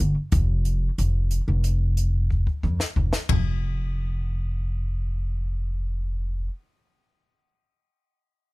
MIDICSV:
0, 0, Header, 1, 3, 480
1, 0, Start_track
1, 0, Tempo, 660793
1, 234, Time_signature, 9, 3, 24, 8
1, 6197, End_track
2, 0, Start_track
2, 0, Title_t, "Upright bass"
2, 0, Program_c, 0, 32
2, 0, Note_on_c, 0, 31, 64
2, 98, Note_off_c, 0, 31, 0
2, 235, Note_on_c, 0, 29, 79
2, 637, Note_off_c, 0, 29, 0
2, 714, Note_on_c, 0, 29, 65
2, 1016, Note_off_c, 0, 29, 0
2, 1073, Note_on_c, 0, 29, 65
2, 1779, Note_off_c, 0, 29, 0
2, 1916, Note_on_c, 0, 41, 69
2, 2016, Note_off_c, 0, 41, 0
2, 2155, Note_on_c, 0, 29, 63
2, 2255, Note_off_c, 0, 29, 0
2, 2392, Note_on_c, 0, 29, 70
2, 4699, Note_off_c, 0, 29, 0
2, 6197, End_track
3, 0, Start_track
3, 0, Title_t, "Drums"
3, 232, Note_on_c, 9, 42, 68
3, 235, Note_on_c, 9, 36, 87
3, 304, Note_off_c, 9, 42, 0
3, 308, Note_off_c, 9, 36, 0
3, 473, Note_on_c, 9, 42, 48
3, 546, Note_off_c, 9, 42, 0
3, 715, Note_on_c, 9, 42, 63
3, 788, Note_off_c, 9, 42, 0
3, 950, Note_on_c, 9, 42, 51
3, 1022, Note_off_c, 9, 42, 0
3, 1190, Note_on_c, 9, 42, 64
3, 1263, Note_off_c, 9, 42, 0
3, 1432, Note_on_c, 9, 42, 52
3, 1505, Note_off_c, 9, 42, 0
3, 1674, Note_on_c, 9, 36, 43
3, 1747, Note_off_c, 9, 36, 0
3, 1793, Note_on_c, 9, 36, 40
3, 1866, Note_off_c, 9, 36, 0
3, 1913, Note_on_c, 9, 36, 53
3, 1986, Note_off_c, 9, 36, 0
3, 2034, Note_on_c, 9, 38, 48
3, 2106, Note_off_c, 9, 38, 0
3, 2152, Note_on_c, 9, 36, 61
3, 2224, Note_off_c, 9, 36, 0
3, 2272, Note_on_c, 9, 38, 60
3, 2344, Note_off_c, 9, 38, 0
3, 2391, Note_on_c, 9, 43, 72
3, 2391, Note_on_c, 9, 53, 59
3, 2392, Note_on_c, 9, 36, 73
3, 2464, Note_off_c, 9, 36, 0
3, 2464, Note_off_c, 9, 43, 0
3, 2464, Note_off_c, 9, 53, 0
3, 6197, End_track
0, 0, End_of_file